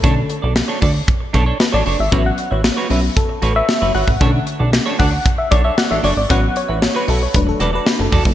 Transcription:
<<
  \new Staff \with { instrumentName = "Clean electric guitar" } { \time 4/4 \key b \minor \tempo 4 = 115 <d' a' cis''>16 r8 <d' a' d''>16 r16 <d' a' cis''>16 <d' a' d''>16 r8. <d' a' cis''>16 <d' a' cis''>16 r16 <d' a' cis''>16 <d' a' cis''>16 r16 | <fis' b' cis''>16 r8 <fis' b' e''>16 r16 <fis' b' cis''>16 <fis' b' e''>16 r8. <fis' b' cis''>16 <fis' b' cis''>16 r16 <fis' b' cis''>16 <fis' b' cis''>16 r16 | <d' a' cis''>16 r8 <d' a' d''>16 r16 <d' a' cis''>16 <d' a' d''>16 r8. <d' a' cis''>16 <d' a' cis''>16 r16 <d' a' cis''>16 <d' a' cis''>16 r16 | <fis' b' cis''>16 r8 <fis' b' e''>16 r16 <fis' b' cis''>16 <fis' b' e''>16 r8. <fis' a' d''>16 <fis' a' d''>16 r8 <fis' a' d''>16 r16 | }
  \new Staff \with { instrumentName = "FM electric piano" } { \time 4/4 \key b \minor a'8. r2 r16 b'16 d''8 e''16~ | e''16 fis''8 cis''8 r8. a'8. e''8. fis''8~ | fis''8 r4 fis''8. e''16 d''16 e''16 fis''16 e''16 d''16 d''16 | fis''8 cis''8. b'16 a'16 cis''16 b'16 a'16 b'16 b'8 a'8. | }
  \new Staff \with { instrumentName = "FM electric piano" } { \time 4/4 \key b \minor <d a cis'>8 r2. r8 | <fis b cis'>8 r4 <fis b cis'>8 r2 | <d a cis'>4. r2 r8 | <fis b cis'>8 r4. <fis a d'>4. r8 | }
  \new Staff \with { instrumentName = "Analog synth bass" } { \clef bass \time 4/4 \key b \minor b,,8 r16 b,,8 r16 d,8 r8 b,,8 r16 a,,16 fis,,16 gis,,16 | a,,8 r16 a,,8 r16 b,,8 r8 a,,8 r16 fis,,16 gis,,16 a,,16 | b,,8 r16 b,,8 r16 d,8 r8 b,,8 r16 a,,16 fis,,16 gis,,16 | a,,8 r16 a,,8 r16 b,,8 e,,8 e,,8 r16 fis,,16 e,,16 fis,,16 | }
  \new DrumStaff \with { instrumentName = "Drums" } \drummode { \time 4/4 <hh bd>8 hh8 <hh sn>8 <hho bd>8 <hh bd>8 <hh bd>8 <hh sn>8 hho8 | <hh bd>8 hh8 <hh sn>8 hho8 <hh bd>8 hh8 <hh sn>8 hho16 bd16 | <hh bd>8 hh8 <hh sn>8 <hho bd>8 <hh bd>8 <hh bd>8 <hh sn>8 hho8 | <hh bd>8 hh8 <hh sn>8 hho8 <hh bd>8 hh8 <hh sn>8 <hho bd>16 bd16 | }
>>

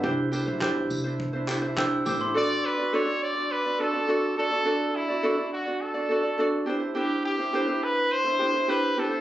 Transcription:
<<
  \new Staff \with { instrumentName = "Glockenspiel" } { \time 4/4 \key d \major \tempo 4 = 104 r2. <g'' e'''>8 d'''16 c'''16~ | c'''16 r2. r8. | r1 | r1 | }
  \new Staff \with { instrumentName = "Trumpet" } { \time 4/4 \key d \major r1 | d''8 b'8 cis''8 d''8 b'8 a'4 a'8~ | a'8 e'4 fis'8 a'4. r8 | g'8 g'4 b'8 c''4 b'8 a'8 | }
  \new Staff \with { instrumentName = "Ukulele" } { \time 4/4 \key d \major <d' e' g' c''>8 <d' e' g' c''>16 <d' e' c''>16 <d' e' g' c''>8. <d' e' c''>8 <d' e' c''>16 <d' e' g' c''>16 <d' e' c''>16 <d' e' g' c''>8 <d' e' g' c''>16 <d' e' c''>16 | <d' fis' a' d''>8. <d' fis' d''>16 <d' fis' a' d''>16 <d' fis' d''>8 <d' fis' d''>8 <d' fis' d''>16 <d' fis' a' d''>16 <d' fis' d''>16 <d' fis' a' d''>8 <d' fis' a' d''>16 <d' fis' d''>16 | <d' fis' a' d''>8. <d' fis' d''>16 <d' fis' a' d''>16 <d' fis' d''>8 <d' fis' d''>8 <d' fis' d''>16 <d' fis' a' d''>16 <d' fis' d''>16 <d' fis' a' d''>8 <d' e' g' c''>16 <d' e' c''>16 | <d' e' g' c''>8. <d' e' c''>16 <d' e' g' c''>16 <d' e' c''>4 <d' e' c''>16 <d' e' g' c''>16 <d' e' c''>16 <d' e' g' c''>8 <d' e' g' c''>16 <d' e' c''>16 | }
  \new Staff \with { instrumentName = "Upright bass" } { \clef bass \time 4/4 \key d \major c,8. b,,8. c,2 a,,8 | r1 | r1 | r1 | }
  \new DrumStaff \with { instrumentName = "Drums" } \drummode { \time 4/4 bd8 tamb8 <hc bd>8 tamb8 bd8 <hc tamb>8 <hc bd>8 tamb8 | r4 r4 r4 r4 | r4 r4 r4 r4 | r4 r4 r4 r4 | }
>>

